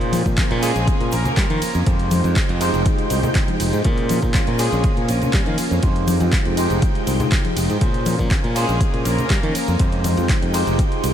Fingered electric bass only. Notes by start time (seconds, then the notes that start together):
Already playing: A#2
0.26 A#2
0.51 A#2
0.76 A#1
1.01 A#2
1.13 A#1
1.26 muted fingered electric bass stroke
1.37 G3
1.50 D#3
1.62 muted fingered electric bass stroke
1.75 F2
1.87 F2
2.24 F2
2.49 F2
2.74 F1
3.11 C2
3.60 F1
3.73 G#2
3.85 A#2
4.23 A#2
4.48 A#2
4.72 A#1
4.97 A#2
5.09 A#1
5.22 muted fingered electric bass stroke
5.34 G3
5.47 D#3
5.58 muted fingered electric bass stroke
5.71 F2
5.83 F2
6.21 F2
6.46 F2
6.71 F1
7.07 C2
7.57 F1
7.70 G#2
7.82 A#2
8.19 A#2
8.44 A#2
8.69 A#1
8.94 A#2
9.05 A#1
9.19 muted fingered electric bass stroke
9.30 G3
9.43 D#3
9.55 muted fingered electric bass stroke
9.68 F2
9.80 F2
10.18 F2
10.42 F2
10.67 F1
11.04 C2